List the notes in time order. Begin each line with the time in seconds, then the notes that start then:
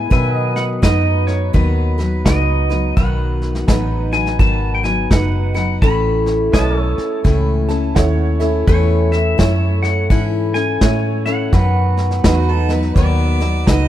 Already playing: B3 E4 B4
0.10 B2 D#3 F#3 B3 D#4 B4 E5 G#5, kick, snare
0.33 D#5
0.56 F#5, snare
0.82 F#2 F#3 B3 D#4 F#4 B4 D#5, kick, snare, hi-hat pedal
1.27 C#5, snare
1.53 D#2 B2 D#3 F#3 B3 D#4 B4, kick, snare
1.98 F#3 B3 D#4 B4, snare
2.25 C#2 D#4 F#4 B4 D#5, kick, snare, hi-hat pedal
2.69 F#3 B3 D#4 B4, snare
2.97 B1 B2 D#3 F#3 B3 D#4 B4 F#5, kick, snare
3.42 snare
3.55 snare
3.67 A1 F#3 B3 D#4 F#4 B4, kick, snare, hi-hat pedal
4.12 F#3 B3 D#4 B4 G#5, snare
4.26 snare
4.39 G#1 B2 D#3 F#3 B3 D#4 B4 A5, kick, snare
4.75 G5
4.83 F#3 B3 D#4 B4 G#5, snare
5.10 F#1 D#4 F#4 B4 F#5, kick, snare, hi-hat pedal
5.54 F#3 B3 D#4 B4 F#5, snare
5.82 A1 A2 E3 A3 C#4 E4 A4 B5, kick, snare
6.26 snare
6.52 B1 A3 C#4 E4 A4 B4 C#5 D#5 A5, kick, snare, hi-hat pedal
6.78 A4 C#5
6.98 snare
7.24 C#2 A2 E3 A3 C#4 E4 A4, kick, snare
7.69 A3 C#4 E4 A4 A5, snare
7.95 D#2 E4 A4 C#5 F#5, kick, snare, hi-hat pedal
8.40 A3 C#4 E4 A4 E5, snare
8.67 E2 A2 E3 A3 C#4 E4 A4 C#5, kick, snare
9.12 E5, snare
9.38 F#2 A3 C#4 E4 A4 C#5, kick, snare, hi-hat pedal
9.83 F#5, snare
10.10 G#2 E3 C#4 E4 A4 F#5, kick, snare
10.54 C#4 E4 A4 G#5, snare
10.81 A2 E4 A4 C#5, kick, snare, hi-hat pedal
11.26 A3 C#4 E4 A4 F#5, snare
11.53 F#2 B2 D#3 F#3 B3 D#4 F#4 B4, kick, snare
11.97 snare
12.11 snare
12.24 E2 F#3 B3 D#4 F#4 B4, kick, snare, hi-hat pedal
12.49 A4
12.69 F#3 B3 D#4 B4, snare
12.82 snare
12.96 D#2 B2 D#3 F#3 B3 D#4 B4 D5, kick, snare
13.05 E5
13.40 F#3 B3 D#4 B4, snare
13.66 C#2 D#4 F#4 B4 D#5, kick, snare, hi-hat pedal